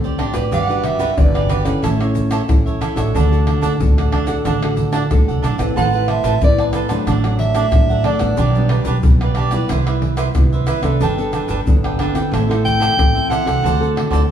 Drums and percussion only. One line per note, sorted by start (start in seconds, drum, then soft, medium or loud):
0.04 pandeiro soft
0.04 shaker soft
0.04 surdo soft
0.19 pandeiro medium
0.19 tamborim medium
0.34 pandeiro medium
0.34 tamborim medium
0.34 shaker medium
0.34 surdo soft
0.52 pandeiro medium
0.52 shaker medium
0.52 surdo medium
0.69 pandeiro soft
0.69 shaker soft
0.84 pandeiro medium
0.84 tamborim medium
1.00 pandeiro medium
1.00 shaker medium
1.00 surdo soft
1.18 pandeiro medium
1.18 shaker medium
1.18 surdo loud
1.35 pandeiro soft
1.35 tamborim medium
1.35 shaker soft
1.50 pandeiro medium
1.50 tamborim medium
1.50 shaker medium
1.65 pandeiro medium
1.65 tamborim medium
1.65 shaker medium
1.65 surdo soft
1.84 pandeiro medium
1.84 tamborim medium
1.84 shaker medium
1.84 surdo medium
2.00 pandeiro soft
2.00 tamborim medium
2.00 shaker soft
2.15 pandeiro medium
2.15 shaker medium
2.15 surdo soft
2.31 pandeiro medium
2.31 tamborim medium
2.31 shaker medium
2.49 pandeiro medium
2.49 tamborim medium
2.49 shaker medium
2.49 surdo loud
2.67 pandeiro soft
2.67 shaker soft
2.67 surdo soft
2.82 pandeiro medium
2.82 tamborim medium
2.82 shaker medium
2.97 pandeiro medium
2.97 tamborim medium
2.97 shaker medium
2.97 surdo soft
3.16 pandeiro medium
3.16 shaker medium
3.16 surdo medium
3.33 pandeiro soft
3.33 shaker soft
3.47 pandeiro medium
3.47 tamborim medium
3.63 pandeiro medium
3.63 shaker medium
3.63 surdo soft
3.80 pandeiro medium
3.80 shaker medium
3.80 surdo loud
3.98 pandeiro soft
3.98 tamborim medium
3.98 shaker soft
4.12 pandeiro medium
4.12 tamborim medium
4.27 pandeiro medium
4.27 tamborim medium
4.27 shaker medium
4.27 surdo soft
4.45 pandeiro medium
4.45 tamborim medium
4.45 shaker medium
4.45 surdo medium
4.63 pandeiro soft
4.63 tamborim medium
4.63 shaker soft
4.77 pandeiro medium
4.77 shaker medium
4.77 surdo soft
4.93 pandeiro medium
4.93 tamborim medium
4.93 shaker medium
5.11 pandeiro medium
5.11 tamborim medium
5.11 shaker medium
5.11 surdo loud
5.29 pandeiro soft
5.29 shaker soft
5.29 surdo soft
5.44 pandeiro medium
5.44 tamborim medium
5.44 shaker medium
5.59 pandeiro medium
5.59 tamborim medium
5.59 shaker medium
5.59 surdo soft
5.77 pandeiro medium
5.77 shaker medium
5.77 surdo medium
5.93 pandeiro soft
5.93 shaker soft
6.08 pandeiro medium
6.08 tamborim medium
6.24 pandeiro medium
6.24 shaker medium
6.24 surdo soft
6.42 pandeiro medium
6.42 shaker medium
6.42 surdo loud
6.58 pandeiro soft
6.58 tamborim medium
6.58 shaker soft
6.73 pandeiro medium
6.73 tamborim medium
6.73 shaker medium
6.89 pandeiro medium
6.89 tamborim medium
6.89 shaker medium
6.89 surdo soft
7.07 pandeiro medium
7.07 tamborim medium
7.07 shaker medium
7.07 surdo medium
7.24 pandeiro soft
7.24 tamborim medium
7.24 shaker soft
7.39 pandeiro medium
7.55 pandeiro medium
7.55 tamborim medium
7.55 shaker medium
7.72 pandeiro medium
7.72 tamborim medium
7.72 shaker medium
7.72 surdo loud
7.90 pandeiro soft
7.90 shaker soft
7.90 surdo soft
8.04 pandeiro medium
8.04 tamborim medium
8.19 pandeiro medium
8.19 tamborim medium
8.19 shaker medium
8.19 surdo soft
8.37 pandeiro medium
8.37 shaker medium
8.37 surdo medium
8.55 pandeiro soft
8.55 shaker soft
8.69 pandeiro medium
8.69 tamborim medium
8.85 pandeiro medium
8.85 shaker medium
8.85 surdo soft
9.03 pandeiro loud
9.03 shaker medium
9.03 surdo loud
9.21 pandeiro soft
9.21 tamborim medium
9.21 shaker soft
9.35 pandeiro medium
9.35 tamborim medium
9.51 pandeiro medium
9.51 tamborim medium
9.51 shaker medium
9.51 surdo soft
9.69 pandeiro medium
9.69 tamborim medium
9.69 shaker medium
9.69 surdo medium
9.87 pandeiro soft
9.87 tamborim medium
9.87 shaker soft
10.02 pandeiro medium
10.02 surdo soft
10.17 pandeiro medium
10.17 tamborim medium
10.17 shaker medium
10.35 pandeiro medium
10.35 tamborim medium
10.35 shaker medium
10.35 surdo loud
10.53 pandeiro soft
10.53 shaker soft
10.53 surdo soft
10.67 pandeiro medium
10.67 tamborim medium
10.67 shaker medium
10.83 pandeiro medium
10.83 tamborim medium
10.83 shaker medium
10.83 surdo soft
11.01 pandeiro medium
11.01 shaker medium
11.01 surdo medium
11.18 pandeiro soft
11.18 shaker soft
11.33 pandeiro medium
11.33 tamborim medium
11.33 shaker medium
11.49 pandeiro medium
11.49 shaker medium
11.49 surdo soft
11.67 pandeiro medium
11.67 shaker medium
11.67 surdo loud
11.84 pandeiro soft
11.84 tamborim medium
11.84 shaker soft
11.99 pandeiro medium
11.99 tamborim medium
12.15 pandeiro medium
12.15 tamborim medium
12.15 shaker medium
12.15 surdo soft
12.34 pandeiro medium
12.34 tamborim medium
12.34 shaker medium
12.34 surdo medium
12.51 pandeiro soft
12.51 tamborim medium
12.51 shaker soft
12.66 pandeiro medium
12.66 shaker medium
12.66 surdo soft
12.82 pandeiro medium
12.82 tamborim medium
12.82 shaker medium
12.99 pandeiro medium
12.99 tamborim medium
12.99 shaker medium
12.99 surdo loud
13.17 pandeiro soft
13.17 shaker soft
13.17 surdo soft
13.31 pandeiro medium
13.31 tamborim medium
13.31 shaker medium
13.47 pandeiro medium
13.47 tamborim medium
13.47 shaker medium
13.47 surdo soft
13.66 pandeiro medium
13.66 shaker medium
13.66 surdo medium
13.83 pandeiro soft
13.83 shaker soft
13.97 pandeiro medium
13.97 tamborim medium
14.13 pandeiro medium
14.13 shaker medium
14.13 surdo soft